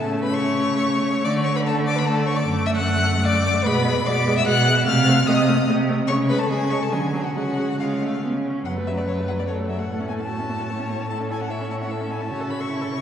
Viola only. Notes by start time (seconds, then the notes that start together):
0.02 A3
1.25 A3
1.65 A3
2.06 A3
2.46 A3
3.26 A3
3.66 G#3
3.86 G#3
4.07 G#3
4.27 G#3
4.47 G#3
4.68 G#3
4.87 A3
5.08 A3
5.28 A3
5.49 A3
5.69 A3
5.89 A3
6.09 G#3
6.30 G#3
6.50 G#3
6.71 G#3
6.92 F#3
7.14 F#3
7.36 G#3
7.57 G#3
7.80 G#3
8.02 A3
8.24 B3
8.46 C#4
8.67 F#3
8.77 A3
8.88 F#3
8.98 A3
9.08 F#3
9.19 A3
9.29 F#3
9.39 A3
9.49 F#3
9.59 A3
9.69 F#3
9.79 A3
9.89 A3
10.00 C#4
10.10 A3
10.20 C#4
10.29 A3
10.40 C#4
10.50 A3
10.60 C#4
10.70 A3
10.79 C#4
10.89 A3
11.00 C#4
11.11 E4
11.21 C#4
11.31 E4
11.41 C#4
11.51 E4
11.61 C#4
11.72 E4
11.82 C#4
11.91 E4
12.01 C#4
12.11 E4
12.21 C#4
12.30 C#5
12.41 A4
12.51 C#5
12.60 A4
12.71 C#5
12.82 A4
12.92 C#5